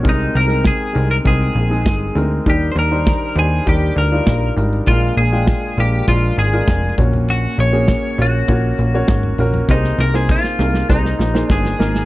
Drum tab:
HH |x-xxx-x-x-x-x-x-|x-x-x-x-x-x-x-xx|x-xxx-x-x-x-x-xx|x-x-x-x-x-x-x-xx|
SD |----o-------o---|----o-------o---|----o-------o---|----o-------o---|
FT |----------------|----------------|--------------oo|-------------ooo|
BD |o---o---o---o---|o---o---o---o---|o---o---o---o-o-|----o---o---o---|

HH |----------------|
SD |oooooooooooooooo|
FT |----------------|
BD |o---o---o---o---|